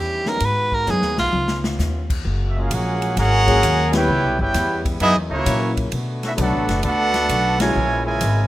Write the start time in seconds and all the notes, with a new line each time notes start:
Already playing: E2 D#3 G3 C#4 E4
0.00 G4
0.26 F#3 G#3 B3 D#4 G#4 A#4, snare
0.40 G#2 G#3 B3 F#4, kick, ride
0.45 B4
0.72 A#4, kick
0.86 F#2 F#3 G#3 B3 D#4 G#4, snare, hi-hat pedal
0.91 G#4
1.02 D#2, snare
1.18 B1 F4, snare
1.33 C#2 B3 C#4 F4, high tom
1.48 snare
1.64 snare
1.79 D#2, snare, hi-hat pedal
2.10 kick, crash
2.24 F#1 F#3 G#3 A#3 F#4, kick
2.48 E5
2.56 A#3 C#4 F4 G#4 A#4 F5
2.71 A#1 A#3 C#4 F#4 G#4 A#4 F#5, kick, hi-hat pedal, ride
3.02 ride
3.16 G#1 A#3 C#4 F#4 G#4 A#4 F#5, kick, snare, ride
3.46 F#3 A#3 C#4 F#4 G#4, kick, ride
3.62 D#2, kick, hi-hat pedal, ride
3.92 G3 B3 C#4 E4 G4 B4 C#5 G5, snare, ride
4.07 C#2 C#3 G3 B3 E4
4.23 B1
4.39 G1 B3 E4 G4 B4 C#5 G5, kick
4.54 E2, kick, snare, hi-hat pedal, ride
4.85 kick, ride
5.00 F#2 F#3 A#3 B3 D#4 E4 G#4 D#5, kick, ride
5.15 E2
5.30 C#2 E3 A#3 C#4 E4 F#4 C#5
5.45 A#2 F#3 A#3 C#4 E4 A#4, kick, hi-hat pedal, ride
5.77 kick, ride
5.92 B2 D3 A3 B3 F#4, ride
6.23 C#4 E4 F#4 A4 E5, snare, ride
6.37 B1 F#3 A3 B3 D4 A4 B4 F#5, kick, hi-hat pedal, ride
6.41 A3 D4 F#4
6.53 A1
6.68 F#1, snare, ride
6.83 D2 A3 D4 F#4 A4 B4 F#5, kick, ride
7.14 snare, ride
7.29 B1, kick, hi-hat pedal, ride
7.59 C#3 E3 G#3 A#3 C#4 E4 F#4 A#4 C#5 G#5, snare, ride
7.75 A#1 C#3 G#3 A#3 E4
8.05 C#3 E3 G#3 E4 A#4 C#5 G#5
8.21 G#1, kick, hi-hat pedal, ride